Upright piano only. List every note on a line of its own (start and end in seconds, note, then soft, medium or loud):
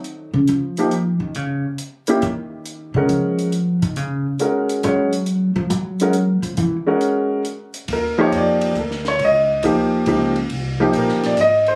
0.78 0.90 F3 medium
0.78 0.91 A#3 medium
0.78 0.91 D#4 soft
0.78 0.91 G4 medium
2.08 2.21 A#3 medium
2.08 2.21 C#4 medium
2.08 2.21 E4 medium
2.08 2.21 G4 medium
2.96 3.50 G#3 medium
2.96 3.50 C#4 medium
2.96 3.51 A#4 medium
2.96 3.51 F#5 medium
4.40 4.82 G#3 medium
4.40 4.82 C#4 soft
4.40 4.82 F#4 soft
4.40 4.83 A#4 medium
4.84 5.10 G#3 medium
4.84 5.10 C#4 medium
4.84 5.11 F#4 soft
4.84 5.11 C#5 medium
6.01 6.13 G#3 medium
6.01 6.13 C#4 medium
6.01 6.14 F#4 medium
6.01 6.14 A#4 medium
6.87 7.42 G#3 medium
6.87 7.42 C#4 medium
6.87 7.42 F#4 medium
6.87 7.43 A#4 medium
7.93 8.19 A#4 medium
8.18 8.73 F3 medium
8.18 8.73 A#3 medium
8.18 8.73 D#4 medium
8.18 8.74 G4 medium
8.18 8.33 C#5 medium
8.37 8.76 D5 medium
8.77 8.79 A4 soft
8.77 9.07 A#4 medium
9.08 9.20 C#5 medium
9.25 9.63 D#5 medium
9.63 10.05 F3 medium
9.63 10.06 A#3 medium
9.63 10.06 D#4 medium
9.63 10.06 G4 medium
10.07 10.33 F3 medium
10.07 10.34 A#3 medium
10.07 10.34 D#4 medium
10.07 10.34 G4 medium
10.80 11.35 F3 medium
10.80 11.35 A#3 medium
10.80 11.35 D#4 medium
10.80 11.36 G4 medium
10.98 11.25 A#4 medium
11.26 11.38 D5 medium
11.41 11.68 D#5 medium
11.68 11.75 C5 medium